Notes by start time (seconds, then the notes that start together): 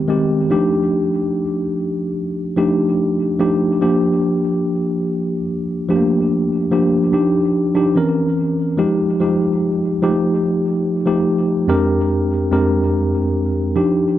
Already playing: D#3 G#3 B3 C4 G4
0.08 D#3 G#3 C4 G4
0.50 F3 A3 D4 D#4 G4
2.57 F3 A3 D4 D#4 G4
3.39 F3 A3 D4 D#4 G4
3.81 F3 A#3 D4 G4
5.89 F3 A3 D4 G4
5.96 A#3
6.71 F3 A#3 D4 G4
7.12 F3 D4 D#4 G4
7.75 F3 D4 D#4 G4
7.95 E3 C4 C#4 A#4
8.78 F3 G#3 D#4 G4
9.20 F3 G#3 D#4 G4
10.02 F3 G#3 D#4 G4
10.09 A3
11.06 F3 A3 D#4 G4
11.67 F2 G#3 C4 D4 G4 A#4
12.51 F2 G#3 C4 D4 G4 A#4
13.76 F3 D4 D#4 G4